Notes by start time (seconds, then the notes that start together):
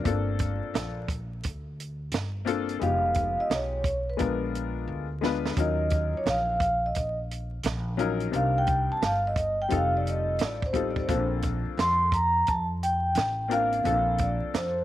Already playing: D5
0.04 G1 A#3 C4 D4 F4 A4, kick, closed hi-hat
0.39 kick, closed hi-hat
0.62 muted upright bass stroke
0.74 A#1, snare, closed hi-hat
1.08 kick, closed hi-hat
1.43 D2, kick, closed hi-hat
1.80 closed hi-hat
2.11 G1, snare, closed hi-hat
2.45 A#3 C4 D4 F4 A4, closed hi-hat
2.69 closed hi-hat
2.79 F1 G#3 B3 D#4 F4 G4 F5, closed hi-hat
3.14 kick, closed hi-hat
3.38 D#5, muted upright bass stroke
3.50 B1 C#5, snare, closed hi-hat
3.84 kick, closed hi-hat
4.10 B4
4.17 A#1 G#3 B3 D4 F4 A#4, kick, closed hi-hat
4.55 closed hi-hat
4.88 D2
5.21 G#3 B3 D4 F4 B4, snare
5.46 snare
5.56 D#2 F#3 C#4 D#4 F4 A#4 D#5, kick, closed hi-hat
5.90 kick, closed hi-hat
6.13 C#5, muted upright bass stroke
6.26 A#1 F5, snare, closed hi-hat
6.60 kick, closed hi-hat
6.86 D#5
6.95 A#1, kick, closed hi-hat
7.31 closed hi-hat
7.63 A#1, snare, closed hi-hat
7.97 F#3 C#4 D#4 F4 A#4, closed hi-hat
8.20 closed hi-hat
8.31 C2 G3 C4 D4 D#4 A#4, closed hi-hat
8.36 F5
8.58 G5
8.67 kick, closed hi-hat
8.89 A5, muted upright bass stroke
9.02 G1 F5, snare, closed hi-hat
9.27 D#5
9.36 kick, closed hi-hat
9.62 G5
9.69 F1 G3 C4 D#4 F4 A4, kick, closed hi-hat
9.75 F5
9.97 D5
10.07 D#5, closed hi-hat
10.39 A1, snare, closed hi-hat
10.44 D5
10.62 C5, kick
10.73 G3 C4 D#4 F4 A4, kick, closed hi-hat
10.91 D5
10.96 C5, kick
11.07 A#1 A#3 C4 D4 F4 A4, kick, closed hi-hat
11.42 kick, closed hi-hat
11.65 muted upright bass stroke
11.77 F2 C6, snare, closed hi-hat
12.12 A#5, kick, closed hi-hat
12.47 F2 A5, kick, closed hi-hat
12.83 G5, closed hi-hat
13.15 A1, snare, closed hi-hat
13.48 A#3 C4 D4 F4 A#4, closed hi-hat
13.53 F5
13.72 closed hi-hat
13.83 A#1 A#3 C4 D4 F4 A4, closed hi-hat
14.18 kick, closed hi-hat
14.23 D5
14.42 muted upright bass stroke
14.54 F2 C5, snare, closed hi-hat